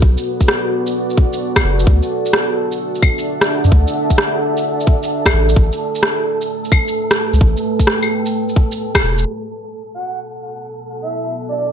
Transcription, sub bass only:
0.02 0.17 B1 loud
1.64 1.86 F#1 medium
1.87 2.01 D2 loud
3.64 3.71 F#2 medium
3.72 3.86 D2 loud
5.33 5.55 A1 medium
5.56 5.71 A1 loud
7.33 7.40 C#2 medium
7.41 7.55 A1 loud
9.03 9.25 E1 medium

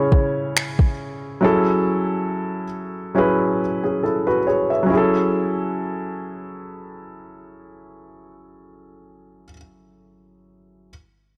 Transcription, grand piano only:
0.00 0.90 C#3 medium
0.00 0.90 C#4 medium
0.00 0.91 E4 medium
0.00 0.91 G#4 medium
0.00 0.92 C#5 medium
1.41 2.64 F#3 medium
1.41 2.64 C#4 medium
1.41 2.65 E4 medium
1.41 2.65 G#4 medium
1.41 2.66 A4 medium
3.15 4.38 F#3 medium
3.15 3.59 C#4 medium
3.15 3.60 E4 medium
3.15 3.60 G#4 medium
3.15 3.61 B4 medium
3.84 4.03 C#4 soft
3.84 4.02 G#4 medium
4.03 4.26 E4 soft
4.03 4.26 A4 medium
4.27 4.46 F#4 medium
4.27 4.46 B4 medium
4.47 4.69 G#4 medium
4.47 4.69 C#5 medium
4.70 5.12 B4 soft
4.70 5.12 E5 medium
4.83 9.42 F#3 medium
4.83 9.46 C#4 medium
4.90 9.50 E4 medium
4.90 9.53 G#4 medium
4.97 9.57 A4 medium

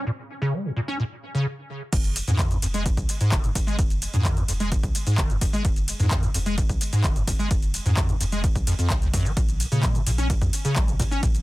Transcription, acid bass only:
0.07 0.10 A#2 medium
0.42 0.55 C#3 loud
0.53 0.66 G#3 medium
0.65 0.71 A#2 loud
0.76 0.80 A#2 medium
0.88 0.98 C#4 loud
1.00 1.03 A#2 medium
1.35 1.46 C#3 loud
1.93 1.97 F2 medium
2.28 2.41 G#2 loud
2.39 2.52 D#3 medium
2.51 2.57 F2 loud
2.62 2.66 F2 medium
2.74 2.84 G#3 loud
2.86 2.90 F2 medium
3.21 3.34 G#2 loud
3.32 3.45 D#3 medium
3.44 3.50 F2 loud
3.55 3.59 F2 medium
3.67 3.77 G#3 medium
3.79 3.83 F2 medium
4.14 4.27 G#2 loud
4.25 4.38 D#3 medium
4.37 4.43 F2 loud
4.48 4.52 F2 medium
4.60 4.70 G#3 loud
4.72 4.76 F2 medium
5.07 5.20 G#2 loud
5.18 5.31 D#3 medium
5.30 5.36 F2 loud
5.41 5.45 F2 medium
5.53 5.63 G#3 loud
5.65 5.69 F2 medium
6.00 6.13 G#2 loud
6.11 6.24 D#3 medium
6.23 6.29 F2 loud
6.34 6.38 F2 medium
6.46 6.56 G#3 loud
6.58 6.62 F2 medium
6.93 7.06 G#2 loud
7.04 7.17 D#3 medium
7.16 7.22 F2 loud
7.28 7.31 F2 medium
7.39 7.49 G#3 loud
7.51 7.55 F2 medium
7.86 7.99 G#2 loud
7.97 8.11 D#3 medium
8.09 8.15 F2 loud
8.21 8.24 F2 medium
8.32 8.42 G#3 loud
8.44 8.48 F2 medium
8.67 8.73 F2 loud
8.79 8.92 F2 loud
8.90 8.94 D#3 loud
9.02 9.08 D#2 medium
9.14 9.27 F#2 loud
9.25 9.32 F3 medium
9.37 9.41 A#2 medium
9.72 9.85 C#3 loud
9.83 9.96 G#3 medium
9.95 10.01 A#2 loud
10.07 10.10 A#2 medium
10.18 10.28 C#4 loud
10.30 10.34 A#2 medium
10.65 10.78 C#3 loud
10.76 10.90 G#3 medium
10.88 10.94 A#2 loud
11.00 11.03 A#2 medium
11.11 11.21 C#4 loud
11.23 11.27 A#2 medium

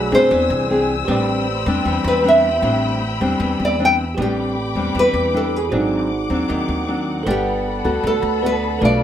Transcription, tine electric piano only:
0.00 0.29 A3 soft
0.00 0.28 F#4 soft
0.00 0.30 C#5 soft
0.00 0.31 D5 medium
0.30 1.06 G#4 soft
0.30 1.07 C5 soft
0.30 1.08 D5 soft
1.05 4.12 G4 medium
1.05 4.13 B4 medium
1.09 4.14 C5 medium
1.09 4.15 D5 medium
4.14 5.67 G4 soft
4.14 5.69 B4 soft
4.19 5.70 C4 soft
4.19 5.71 D5 medium
5.69 7.22 F#4 soft
5.69 7.23 C5 soft
5.73 7.25 D#4 medium
5.73 7.24 D5 soft
7.23 8.39 A4 medium
7.23 8.40 B4 soft
7.27 8.41 D5 soft
7.27 8.42 F#5 medium
8.41 8.78 A4 soft
8.41 8.80 B4 soft
8.41 8.82 D5 soft
8.41 8.82 F#5 soft
8.79 9.03 A4 medium
8.79 9.03 B4 soft
8.83 9.03 D5 soft
8.83 9.03 F5 medium

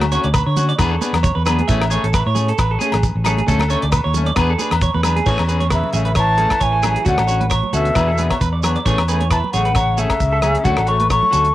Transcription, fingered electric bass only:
0.00 0.16 D2 loud
0.24 0.41 D2 medium
0.47 0.72 D3 medium
0.79 0.96 E2 medium
1.13 1.31 E2 medium
1.36 1.61 E2 medium
1.69 1.96 A1 loud
2.04 2.21 A1 medium
2.26 2.51 A2 medium
2.59 2.76 A1 medium
2.93 3.10 A1 medium
3.15 3.40 A1 medium
3.48 3.75 D2 medium
3.83 4.00 D2 medium
4.05 4.30 D#2 medium
4.36 4.54 E2 medium
4.72 4.89 E2 medium
4.95 5.20 E2 medium
5.27 5.36 A1 medium
5.39 5.81 E2 medium
5.94 6.45 A1 medium
6.61 6.96 A1 medium
7.06 7.16 D2 loud
7.18 7.60 A1 medium
7.73 7.90 D2 medium
7.96 8.30 E2 medium
8.41 8.75 E2 medium
8.86 8.95 A1 medium
8.98 9.40 E2 medium
9.54 10.05 A1 medium
10.21 10.55 C#2 medium
10.65 10.75 D2 medium
10.78 11.20 A1 medium
11.33 11.50 D2 medium

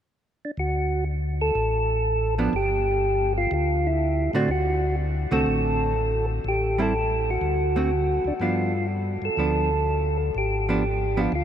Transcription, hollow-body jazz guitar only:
2.38 2.52 F3 medium
2.38 2.52 B3 medium
2.38 2.53 D4 medium
4.34 4.48 D3 medium
4.34 4.48 A3 medium
4.34 4.48 C4 medium
4.34 4.48 F#4 medium
5.31 5.93 D3 medium
5.31 5.93 A3 medium
5.31 5.93 C4 medium
5.31 5.93 F#4 medium
6.78 6.92 G3 medium
6.78 6.92 C4 medium
6.78 6.93 E4 medium
7.76 7.90 D3 medium
7.76 7.90 A3 medium
7.76 7.90 C4 medium
7.76 7.90 F#4 medium
8.41 8.71 F3 soft
8.41 8.71 B3 soft
8.41 8.71 D4 medium
9.38 9.68 F3 soft
9.38 9.69 B3 soft
9.38 9.69 D4 medium
10.69 10.83 F3 medium
10.69 10.83 B3 medium
10.69 10.83 D4 medium
11.17 11.31 F3 medium
11.17 11.31 B3 medium
11.17 11.31 D4 medium

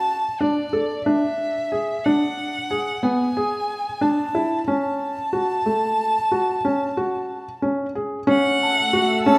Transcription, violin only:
0.00 0.43 A5 medium
0.41 1.06 D5 medium
1.06 2.06 E5 medium
2.04 3.04 F#5 medium
3.03 4.03 G#5 medium
4.02 4.67 A5 medium
4.68 7.58 A5 medium
8.29 9.22 F#5 loud
9.25 9.38 A5 loud

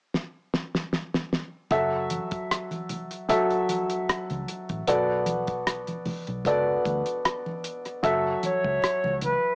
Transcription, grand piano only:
1.71 2.70 F#3 medium
1.71 2.70 F#4 medium
1.71 2.70 A4 medium
1.71 2.71 E5 medium
3.29 4.28 F#3 medium
3.29 4.28 F#4 medium
3.29 4.29 A4 medium
3.29 4.29 E5 medium
4.88 5.87 B3 medium
4.88 5.87 F#4 medium
4.88 5.87 A4 medium
4.88 5.87 D5 medium
6.46 7.45 B3 medium
6.46 7.45 F#4 medium
6.46 7.45 A4 medium
6.46 7.45 D5 medium
8.03 9.02 F#3 medium
8.03 9.02 F#4 medium
8.03 9.02 A4 medium
8.03 9.03 E5 medium

